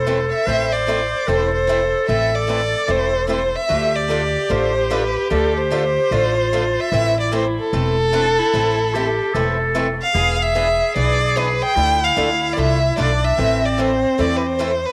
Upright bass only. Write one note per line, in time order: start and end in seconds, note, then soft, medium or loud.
0.00 0.31 E1 medium
0.47 1.11 A1 medium
1.28 1.92 E1 medium
2.09 2.73 A1 medium
2.89 3.53 E1 medium
3.70 4.34 D2 medium
4.50 5.14 A1 medium
5.31 5.95 D2 medium
6.11 6.76 A1 medium
6.92 7.56 A1 medium
7.73 8.37 E1 medium
8.53 9.18 A1 medium
9.35 9.99 E1 medium
10.15 10.79 E1 medium
10.96 11.60 B1 medium
11.76 12.09 D2 medium
12.17 12.51 D2 medium
12.57 12.92 C2 medium
12.98 13.32 B1 medium
13.38 14.03 A1 medium
14.19 14.83 E2 medium